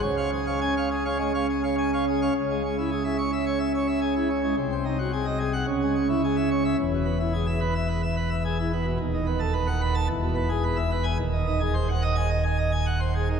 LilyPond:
<<
  \new Staff \with { instrumentName = "Pipe organ" } { \time 4/4 \key des \major \tempo 4 = 108 << { des''16 <des'' f''>16 aes'16 <des'' f''>16 aes''16 <des'' f''>16 aes'16 <des'' f''>16 des''16 <des'' f''>16 aes'16 <des'' f''>16 aes''16 <des'' f''>16 aes'16 <des'' f''>16 | \key cis \minor r4 r16 e''16 r2 r8 | r4. r16 fis''16 r4 r16 e''16 r8 | r4 r16 e''16 r2 r8 |
r4. r16 a''16 r4. r16 gis''16 | \key aes \mixolydian r4. r16 aes''16 r2 | } \\ { des4 des'16 r8 des'16 aes16 r8. des'16 r8 des'16 | cis16 gis16 cis'16 e'16 gis'16 r16 cis''16 e''16 cis''16 e''16 cis''16 e''16 gis'16 e'16 cis'16 gis16 | bis,16 bis16 dis'16 fis'16 gis'16 dis''16 gis'16 r16 cis16 gis16 cis'16 e'16 gis'16 r16 cis''16 e''16 | e,16 b,16 b16 e'16 gis'16 r16 b'16 e''16 b'16 e''16 b'16 e''16 gis'16 e'16 b16 b,16 |
dis,16 dis16 b16 a'16 b'16 fis''16 b'16 r16 e,16 b,16 b16 gis'16 b'16 e''16 b'16 r16 | ees,16 ees16 ees'16 aes'16 c''16 ges''16 ees''16 r16 ees''16 aes''16 ees''16 aes''16 ges''16 c''16 aes'16 ees16 | } >> }
  \new Staff \with { instrumentName = "Pipe organ" } { \clef bass \time 4/4 \key des \major des,1 | \key cis \minor cis,1 | bis,,2 cis,2 | e,,1 |
dis,,2 e,,2 | \key aes \mixolydian ees,,1 | }
>>